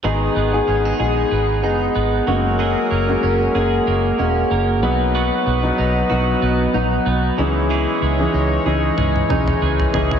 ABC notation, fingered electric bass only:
X:1
M:4/4
L:1/8
Q:"Swing 16ths" 1/4=94
K:G#m
V:1 name="Fingered electric bass" clef=bass
G,,, G,,, G,,, A,,, G,,, F,,, G,,, F,,,- | F,,, F,,, F,,, F,,, F,,, E,,, F,,, B,,,- | B,,, B,,, B,,, B,,, B,,, A,,, B,,, C,,- | C,, C,, C,, C,, C,, B,,, C,, C,, |]